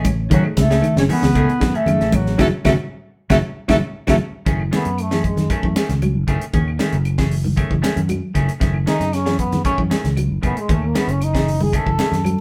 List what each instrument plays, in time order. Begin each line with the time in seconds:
Already playing: fingered electric bass A1
0.05 clean electric guitar C#3, reed electric piano C#5, kick, closed hi-hat, high conga, claves
0.30 fingered electric bass F#1, clean electric guitar D#3 A3 C#4 G#4, bass clarinet F#3, reed electric piano A3 D#4 G#4, kick, closed hi-hat, low conga
0.34 trumpet F#4
0.44 claves
0.57 fingered electric bass C#2, clean electric guitar C#3, bass clarinet A3, trumpet A4, kick, snare, closed hi-hat, high conga
0.71 clean electric guitar A3 C#4 G#4, snare
0.82 clean electric guitar D#3, closed hi-hat, claves
0.96 fingered electric bass F#1, bass clarinet C#4, trumpet C#5, snare, closed hi-hat, high conga
1.09 clean electric guitar D#3 E3 A3 C#4 G#4, bass clarinet B3, trumpet B4, open hi-hat, high conga
1.22 fingered electric bass C#2, snare, low conga
1.35 clean electric guitar C#3 D#3 A3 C#4 G#4, reed electric piano A3 D#4 A4, kick, closed hi-hat, claves
1.49 closed hi-hat
1.60 fingered electric bass F#2, clean electric guitar D#3, reed electric piano A3 D#4 G#4, kick, snare, closed hi-hat
1.74 clean electric guitar A3 C#4 G#4, bass clarinet A3, trumpet A4, muted fingered electric bass stroke, closed hi-hat
1.86 fingered electric bass F#2, clean electric guitar C#3, reed electric piano A3 D#4 G#4, closed hi-hat, high conga, low conga, claves
2.00 fingered electric bass A1, clean electric guitar A3 C#4, snare, closed hi-hat
2.12 clean electric guitar C#3, bass clarinet F#3, trumpet F#4, kick, closed hi-hat, high conga, claves
2.26 snare
2.38 fingered electric bass F#1, clean electric guitar C#3 D#3 F#3 C#4 D#4 F#4, bass clarinet A3, reed electric piano C#4 D#4 F#4, trumpet A4, kick, snare, high conga, claves
2.65 fingered electric bass F#1, clean electric guitar C#3 D#3 F#3 C#4 D#4 F#4, bass clarinet A3, reed electric piano C#4 D#4 F#4, trumpet A4, kick, snare, high conga, claves
3.30 fingered electric bass F#1, clean electric guitar C#3 D#3 F#3 C#4 D#4 F#4, bass clarinet A3, reed electric piano C#4 D#4 F#4, trumpet A4, kick, snare, high conga, claves
3.68 fingered electric bass F#1, clean electric guitar C#3 D#3 F#3 C#4 D#4 F#4, bass clarinet A3, reed electric piano C#4 D#4 F#4, trumpet A4, kick, snare, high conga, claves
4.07 fingered electric bass F#1, clean electric guitar C#3 D#3 F#3 C#4 D#4 F#4, bass clarinet A3, reed electric piano C#4 D#4 F#4, trumpet A4, kick, snare, high conga, claves
4.46 fingered electric bass F#1, clean electric guitar C#3 D#3 A3 C#4 G#4, kick, closed hi-hat, high conga, low conga
4.60 claves
4.71 clean electric guitar D#3 A3 C#4 G#4, trombone B3, snare, closed hi-hat, high conga
4.85 fingered electric bass F#2, muted clean electric guitar stroke, closed hi-hat
4.98 trombone A3, closed hi-hat, high conga, claves
5.11 clean electric guitar E3 A3 C#4 G#4, snare
5.24 trombone G#3, kick, closed hi-hat
5.37 clean electric guitar D#3, snare, closed hi-hat, high conga, low conga
5.50 clean electric guitar D#3 A3 C#4 G#4, trombone A3, kick, closed hi-hat, high conga, claves
5.63 fingered electric bass F#2, clean electric guitar E3, kick
5.76 clean electric guitar D#3 A3 C#4 G#4, snare, closed hi-hat, high conga
5.89 fingered electric bass C#2, snare, closed hi-hat, low conga
6.02 clean electric guitar F#3, closed hi-hat, high conga, claves
6.15 fingered electric bass F#1
6.27 fingered electric bass F#1, clean electric guitar C#3 D#3 A3 C#4 G#4, kick, closed hi-hat, claves
6.41 closed hi-hat
6.53 fingered electric bass D#2, clean electric guitar C#3 D#3 C#4 G#4, muted clean electric guitar stroke, kick, closed hi-hat, high conga, low conga
6.68 claves
6.79 clean electric guitar D#3 A3 C#4 G#4, snare, closed hi-hat, high conga
6.92 fingered electric bass F#1, clean electric guitar C#3, closed hi-hat
7.05 closed hi-hat, high conga, claves
7.18 clean electric guitar E3 A3 C#4 G#4, kick, snare
7.31 open hi-hat
7.44 clean electric guitar D#3, high conga, low conga
7.56 clean electric guitar D#3 A3 C#4 G#4, kick, closed hi-hat, high conga, claves
7.70 fingered electric bass F#1, clean electric guitar E3, kick
7.82 clean electric guitar D#3 A3 C#4 G#4, snare, closed hi-hat, high conga
7.96 fingered electric bass F#2, closed hi-hat, low conga
8.09 clean electric guitar F#3, closed hi-hat, high conga, claves
8.34 fingered electric bass F#1, clean electric guitar C#3 D#3 A3 C#4 G#4, kick, closed hi-hat, claves
8.48 closed hi-hat
8.60 fingered electric bass F#1, clean electric guitar C#3 D#3 A3 C#4 G#4, kick, snare, closed hi-hat, high conga, low conga
8.74 claves
8.86 clean electric guitar D#3 A3 C#4 G#4, trombone D#4, snare, closed hi-hat, high conga
9.00 fingered electric bass F#2, clean electric guitar C#3, snare, closed hi-hat
9.13 trombone C#4, snare, closed hi-hat, high conga, claves
9.26 clean electric guitar E3 A3 C#4 G#4, snare
9.39 trombone B3, kick, closed hi-hat
9.52 clean electric guitar D#3, snare, closed hi-hat, high conga, low conga
9.64 clean electric guitar D#3 A3 C#4 G#4, trombone C#4, kick, closed hi-hat, high conga, claves
9.78 fingered electric bass F#2, clean electric guitar E3, kick
9.90 clean electric guitar D#3 A3 C#4 G#4, snare, closed hi-hat, high conga
10.04 fingered electric bass C#2, snare, closed hi-hat, low conga
10.17 clean electric guitar F#3, closed hi-hat, high conga, claves
10.30 fingered electric bass F#1
10.42 fingered electric bass F#1, clean electric guitar C#3 D#3 A3 C#4 G#4, trombone B3, kick, closed hi-hat, claves
10.57 trombone G#3, muted fingered electric bass stroke, closed hi-hat
10.68 fingered electric bass D#2, clean electric guitar C#3 D#3 A3 C#4 G#4, kick, closed hi-hat, high conga, low conga
10.73 trombone A3
10.82 trombone A#3, claves
10.95 clean electric guitar D#3 A3 C#4 G#4, trombone B3, snare, closed hi-hat, high conga
11.07 fingered electric bass F#1, trombone C#4, muted clean electric guitar stroke, closed hi-hat
11.21 trombone D#4, closed hi-hat, high conga, claves
11.34 clean electric guitar E3 A3 C#4 G#4, kick, snare
11.48 open hi-hat
11.61 clean electric guitar D#3, trombone G#4, high conga
11.73 clean electric guitar D#3 A3 C#4 G#4, trombone A4, kick, closed hi-hat, claves
11.86 fingered electric bass F#1, clean electric guitar E3, kick
11.98 clean electric guitar D#3 A3 C#4 G#4, snare, closed hi-hat, high conga
12.12 fingered electric bass F#2, snare, closed hi-hat, low conga
12.24 clean electric guitar F#3, closed hi-hat, high conga, claves